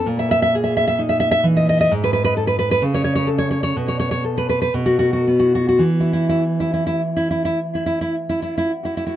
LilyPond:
\new Staff \with { instrumentName = "Nylon-string guitar" } { \time 3/4 \key a \lydian \tempo 4 = 61 << { r32 e''32 e''32 e''32 r32 e''32 e''32 e''32 r32 e''32 e''32 e''32 r32 dis''32 dis''32 dis''32 r32 b'32 b'32 b'32 r32 b'32 b'32 b'32 | r32 cis''32 cis''32 cis''32 r32 cis''32 cis''32 cis''32 r32 cis''32 cis''32 cis''32 r32 b'32 b'32 b'32 r32 fis'32 fis'32 fis'32 r32 fis'32 fis'32 fis'32 | r32 e'32 e'32 e'32 r32 e'32 e'32 e'32 r32 e'32 e'32 e'32 r32 e'32 e'32 e'32 r32 e'32 e'32 e'32 r32 e'32 e'32 e'32 | } \\ { ais,8 gis'8 dis'8 e8 gis,8 a'8 | cis8 a'8 b,8 a'8 b,8 b8 | e2. | } >> }